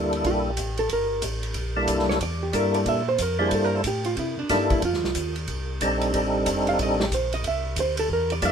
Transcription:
0.00 0.24 D2 medium
0.00 0.51 G3 medium
0.00 0.51 A#3 medium
0.00 0.51 D4 medium
0.00 0.51 E4 medium
0.00 0.51 A4 medium
0.13 ride soft
0.24 0.57 A#1 medium
0.24 0.76 G4 medium
0.24 kick soft
0.24 ride soft
0.57 0.89 A1 medium
0.57 kick soft
0.57 hi-hat pedal medium
0.57 ride medium
0.77 0.90 A4 medium
0.77 ride soft
0.89 1.22 G1 medium
0.89 1.22 A#4 medium
0.89 kick soft
0.89 ride medium
1.22 1.54 A1 medium
1.22 kick soft
1.22 hi-hat pedal medium
1.22 ride medium
1.43 ride soft
1.54 1.87 A#1 medium
1.54 kick soft
1.54 ride medium
1.76 2.19 G3 medium
1.76 2.19 A#3 medium
1.76 2.19 D4 medium
1.76 2.19 E4 medium
1.76 2.19 A4 medium
1.87 2.20 C2 medium
1.87 kick soft
1.87 hi-hat pedal medium
1.87 ride medium
1.99 snare soft
2.09 2.21 C#5 medium
2.09 snare soft
2.21 2.53 E2 medium
2.21 2.42 D5 medium
2.21 kick soft
2.21 ride medium
2.43 2.54 G4 medium
2.52 2.85 G2 medium
2.52 3.03 G3 medium
2.52 3.03 A#3 medium
2.52 3.03 D4 medium
2.52 3.03 E4 medium
2.52 3.03 A4 medium
2.52 2.75 A#4 medium
2.52 kick soft
2.52 hi-hat pedal soft
2.52 ride medium
2.74 2.87 D5 medium
2.74 ride soft
2.85 3.18 A#2 medium
2.85 3.08 E5 medium
2.85 kick soft
2.85 ride medium
3.09 3.22 C5 loud
3.18 3.51 F2 medium
3.18 3.41 A#4 medium
3.18 kick soft
3.18 hi-hat pedal medium
3.18 ride medium
3.39 3.82 G3 medium
3.39 3.82 A#3 medium
3.39 3.82 D4 medium
3.39 3.82 E4 medium
3.39 3.53 G#4 medium
3.39 3.82 C5 medium
3.51 3.84 G2 medium
3.51 3.65 A4 medium
3.51 kick soft
3.51 ride medium
3.65 3.76 A#4 medium
3.76 3.85 A4 medium
3.84 4.16 A2 medium
3.84 4.06 G4 medium
3.84 kick soft
3.84 hi-hat pedal soft
3.84 ride medium
4.04 4.17 F4 medium
4.04 ride soft
4.17 4.36 C3 medium
4.17 4.39 E4 medium
4.17 kick soft
4.17 ride medium
4.37 4.44 C3 soft
4.37 4.50 D4 medium
4.49 4.82 G2 medium
4.49 4.83 G3 medium
4.49 4.83 A#3 medium
4.49 4.83 D4 medium
4.49 4.71 D#4 medium
4.49 4.83 E4 medium
4.49 4.83 A4 medium
4.49 kick soft
4.49 snare soft
4.49 hi-hat pedal soft
4.49 ride medium
4.70 4.83 E4 medium
4.70 kick medium
4.70 ride soft
4.82 4.93 F2 medium
4.82 5.34 F4 medium
4.82 kick soft
4.82 ride medium
4.93 5.04 D#2 medium
4.93 snare soft
5.04 5.14 C2 medium
5.04 snare soft
5.15 5.47 D#2 medium
5.15 kick soft
5.15 hi-hat pedal medium
5.15 ride medium
5.36 ride soft
5.47 5.80 C2 medium
5.47 kick soft
5.47 ride medium
5.81 6.13 A#1 medium
5.81 6.12 G3 medium
5.81 6.12 C4 medium
5.81 6.13 D4 medium
5.81 6.12 D#4 medium
5.81 6.13 A4 medium
5.81 kick soft
5.81 hi-hat pedal medium
5.81 ride medium
6.01 ride soft
6.13 6.45 A1 medium
6.13 7.04 G3 medium
6.13 7.04 C4 medium
6.13 7.05 D4 medium
6.13 7.04 D#4 medium
6.13 7.05 A4 medium
6.13 kick soft
6.13 ride medium
6.46 6.78 F1 medium
6.46 kick soft
6.46 hi-hat pedal soft
6.46 ride medium
6.67 6.80 F5 medium
6.67 ride soft
6.79 7.11 A1 medium
6.79 7.01 D#5 medium
6.79 kick soft
6.79 ride medium
7.00 7.12 G4 medium
7.00 snare medium
7.11 7.43 A#1 medium
7.11 7.33 C5 medium
7.11 kick soft
7.11 hi-hat pedal medium
7.11 ride medium
7.33 7.45 D#5 medium
7.33 ride soft
7.44 7.76 C2 medium
7.44 7.76 E5 loud
7.44 kick soft
7.44 ride medium
7.76 8.08 D2 medium
7.76 kick soft
7.76 hi-hat pedal medium
7.76 ride medium
7.80 7.99 C5 medium
7.97 8.10 A4 medium
7.97 ride medium
8.09 8.41 E2 medium
8.09 8.32 A#4 medium
8.09 kick soft
8.30 8.45 D5 loud
8.30 ride soft
8.42 8.52 F2 medium
8.42 8.52 G3 medium
8.42 8.52 A#3 medium
8.42 8.52 D4 medium
8.42 8.52 E4 medium
8.42 8.52 A4 medium
8.42 8.52 E5 medium
8.42 kick soft
8.42 hi-hat pedal medium
8.42 ride medium

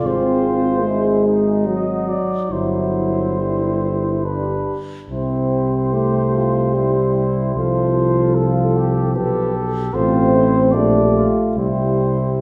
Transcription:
0.00 2.17 G#1 soft
0.00 0.82 F4 soft
0.00 1.66 G#4 soft
0.05 0.86 C4 medium
0.05 1.39 C5 soft
0.85 1.68 G#3 medium
0.85 1.25 E4 soft
1.25 2.51 D#4 soft
1.65 2.50 F#3 medium
1.65 2.33 F#4 soft
1.65 2.10 D#5 soft
2.09 2.53 D5 soft
2.50 4.73 G1 soft
2.50 3.40 F#3 medium
2.50 4.21 E4 soft
2.50 4.26 C5 soft
3.39 4.25 G3 soft
4.24 4.77 D4 soft
4.24 4.77 G4 soft
4.24 4.77 B4 soft
5.09 7.51 C2 soft
5.09 5.95 C4 medium
5.09 5.88 E4 soft
5.09 7.51 G4 soft
5.09 7.52 C5 soft
5.92 6.76 A3 medium
5.92 6.33 G4 soft
6.33 6.74 F4 soft
6.73 7.55 G3 soft
6.73 7.13 E4 soft
7.15 7.55 E4 soft
7.54 9.16 C2 soft
7.54 9.51 F3 medium
7.54 8.35 F4 soft
7.54 9.12 A4 soft
7.54 8.36 C5 soft
8.34 8.75 F4 soft
8.34 9.14 A4 soft
8.76 9.14 G4 soft
9.15 9.93 B1 soft
9.15 9.92 G4 soft
9.15 9.95 A4 soft
9.15 9.54 B4 soft
9.55 9.92 A4 soft
9.93 10.74 A1 soft
9.93 10.76 C4 medium
9.93 10.34 F4 soft
9.93 10.72 A4 soft
9.93 10.73 C5 soft
10.34 10.74 E4 soft
10.71 11.27 A#1 soft
10.71 11.59 A3 medium
10.71 11.14 D4 soft
10.71 11.38 G4 soft
10.71 11.27 D5 soft
11.15 11.56 F4 soft
11.55 12.41 C2 soft
11.55 12.41 G3 soft
11.55 12.00 E4 soft
11.55 12.41 G4 soft
11.55 12.41 C5 soft
12.01 12.41 E4 soft

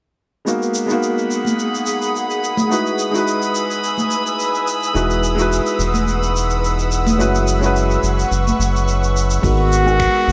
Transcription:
0.45 0.85 G#3 medium
0.45 0.87 A#3 medium
0.45 0.86 B3 medium
0.45 0.86 D#4 medium
0.45 0.86 F#4 medium
0.45 2.69 G#4 medium
0.45 2.68 F#5 medium
0.45 9.45 B5 medium
0.45 7.15 D#6 medium
0.45 shaker soft
0.63 shaker soft
0.75 shaker medium
0.86 2.66 G#3 medium
0.86 2.67 B3 medium
0.86 2.68 D#4 medium
0.86 shaker soft
0.91 2.69 A#3 medium
0.91 2.68 F#4 medium
1.03 shaker soft
1.18 shaker soft
1.31 shaker medium
1.45 high conga soft
1.45 shaker soft
1.59 shaker medium
1.75 shaker soft
1.86 shaker medium
2.02 shaker soft
2.16 shaker soft
2.30 shaker soft
2.44 shaker medium
2.57 high conga medium
2.57 shaker soft
2.69 3.09 G#3 medium
2.69 3.10 D#4 medium
2.69 3.10 E4 medium
2.69 3.11 F#4 medium
2.69 9.40 B4 medium
2.69 3.11 B4 medium
2.69 4.93 G#5 medium
2.69 9.40 E6 medium
2.69 shaker medium
2.86 shaker soft
2.99 shaker medium
3.11 4.90 G#3 medium
3.11 4.91 D#4 medium
3.11 4.92 E4 medium
3.15 4.93 F#4 medium
3.15 4.94 B4 medium
3.15 shaker soft
3.28 shaker soft
3.42 shaker soft
3.55 shaker medium
3.71 shaker soft
3.84 shaker medium
3.98 high conga medium
3.98 shaker soft
4.11 shaker medium
4.27 shaker medium
4.40 shaker soft
4.55 shaker soft
4.68 shaker medium
4.83 shaker soft
4.93 5.60 E1 medium
4.93 5.33 G#3 medium
4.93 5.34 D#4 medium
4.93 5.35 E4 medium
4.93 5.35 F#4 medium
4.93 5.35 B4 medium
4.93 9.40 F#5 medium
4.93 shaker medium
5.10 shaker soft
5.24 shaker medium
5.35 7.14 G#3 medium
5.35 7.15 D#4 medium
5.35 7.16 E4 medium
5.39 7.17 F#4 medium
5.39 7.18 B4 medium
5.39 shaker soft
5.53 shaker medium
5.66 shaker soft
5.79 7.21 E1 medium
5.79 shaker medium
5.94 high conga medium
5.94 shaker medium
6.08 shaker soft
6.23 shaker soft
6.36 shaker medium
6.50 shaker soft
6.64 shaker soft
6.79 shaker soft
6.92 shaker medium
7.07 high conga medium
7.07 shaker medium
7.17 7.98 F#1 medium
7.17 7.57 G#3 medium
7.17 7.58 C#4 medium
7.17 7.59 E4 medium
7.17 7.59 F#4 medium
7.17 7.60 B4 medium
7.17 9.41 C#6 medium
7.17 shaker medium
7.35 shaker soft
7.48 shaker medium
7.59 9.39 G#3 medium
7.59 9.40 C#4 medium
7.59 9.40 E4 medium
7.63 9.41 F#4 medium
7.63 9.42 B4 medium
7.63 shaker soft
7.76 shaker soft
7.91 shaker soft
8.03 8.25 F#1 medium
8.03 shaker medium
8.19 shaker soft
8.31 8.53 F#1 medium
8.31 shaker medium
8.47 high conga medium
8.47 shaker soft
8.60 9.38 F#1 loud
8.60 shaker medium
8.76 shaker soft
8.88 shaker soft
9.04 shaker soft
9.17 shaker medium
9.30 shaker medium
9.42 10.09 G#1 loud
9.42 9.82 G#3 medium
9.42 9.83 B3 medium
9.42 9.83 D#4 medium
9.42 9.83 F#4 medium
9.42 10.32 F#4 loud
9.42 10.32 G#4 medium
9.42 9.84 A#4 medium
9.42 10.32 F#5 medium
9.42 10.32 D#6 medium
9.42 kick medium
9.42 open hi-hat medium
9.42 shaker medium
9.73 shaker medium
9.83 10.32 G#3 medium
9.83 10.32 B3 medium
9.83 10.32 D#4 medium
9.83 low woodblock medium
9.87 10.32 F#4 medium
9.87 10.32 A#4 medium
9.87 shaker soft
9.99 finger snap medium
9.99 kick loud
9.99 open hi-hat medium
9.99 shaker soft
10.14 open hi-hat medium
10.28 10.32 G#1 medium

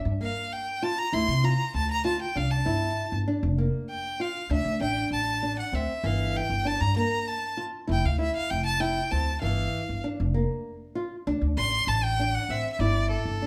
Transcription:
0.05 0.29 G2 loud
0.21 0.59 A#3 medium
0.21 0.54 F5 medium
0.53 0.84 G5 medium
0.82 1.02 F4 medium
0.82 1.00 A5 medium
0.98 1.14 A#5 loud
1.13 1.25 D2 loud
1.13 1.32 E4 medium
1.13 1.46 C6 loud
1.28 1.52 C3 medium
1.44 1.82 F4 medium
1.44 1.75 A#5 medium
1.74 2.23 D2 medium
1.74 1.89 A5 medium
1.91 2.05 A#5 loud
2.05 2.24 F4 medium
2.05 2.20 A5 medium
2.22 2.38 G5 medium
2.36 2.60 C2 medium
2.36 2.55 D4 medium
2.36 2.52 F5 medium
2.51 3.12 A5 medium
2.66 2.90 G1 medium
2.66 3.04 E4 medium
3.12 3.24 G1 medium
3.28 3.47 D4 medium
3.43 3.67 F1 loud
3.58 3.97 A#3 medium
3.90 4.22 G5 medium
4.20 4.39 F4 medium
4.20 4.51 F5 medium
4.50 4.62 D2 loud
4.50 4.70 D4 medium
4.50 4.80 E5 medium
4.65 4.77 D2 medium
4.80 5.05 A1 medium
4.80 5.20 D4 medium
4.80 5.10 G5 medium
5.11 5.59 A1 medium
5.11 5.55 A5 medium
5.43 5.62 D4 medium
5.59 5.76 F#5 medium
5.73 5.85 D2 medium
5.73 5.92 C4 medium
5.73 6.07 E5 medium
6.03 6.40 G1 loud
6.03 6.42 E3 medium
6.03 6.38 F5 medium
6.36 6.68 G5 medium
6.50 6.74 G1 medium
6.65 6.84 D4 medium
6.65 6.82 A5 loud
6.80 7.05 G2 loud
6.80 6.95 A#5 loud
6.96 7.35 A#3 medium
6.96 7.29 A#5 medium
7.27 7.58 A5 medium
7.57 7.77 F4 medium
7.87 8.01 F1 loud
7.87 8.07 E4 medium
7.92 8.07 G5 medium
8.04 8.28 D2 medium
8.04 8.19 F5 medium
8.19 8.57 E4 medium
8.19 8.34 E5 medium
8.36 8.52 F5 medium
8.50 8.99 F1 medium
8.50 8.65 G5 loud
8.65 8.81 A5 medium
8.80 8.99 E4 medium
8.80 9.13 G5 medium
9.11 9.36 D2 medium
9.11 9.30 C4 medium
9.11 9.40 A5 medium
9.41 9.67 G1 medium
9.41 9.80 E3 medium
9.41 9.99 F5 medium
9.89 10.01 G1 medium
10.04 10.23 D4 medium
10.20 10.44 F1 medium
10.34 10.73 A#3 medium
10.95 11.15 F4 medium
11.27 11.39 D2 loud
11.27 11.46 D4 medium
11.41 11.54 D2 medium
11.57 11.81 A1 medium
11.57 11.96 D4 medium
11.57 11.89 C6 loud
11.87 12.36 A1 medium
11.87 12.04 A5 medium
12.03 12.36 G5 loud
12.19 12.38 D4 medium
12.34 12.52 F#5 medium
12.49 12.61 A1 medium
12.49 12.69 C4 medium
12.49 12.72 E5 medium
12.72 12.81 E5 medium
12.79 13.16 G1 loud
12.79 13.19 E4 medium
12.79 13.10 D5 medium
13.10 13.47 A4 medium
13.25 13.47 G1 medium
13.42 13.47 D4 medium

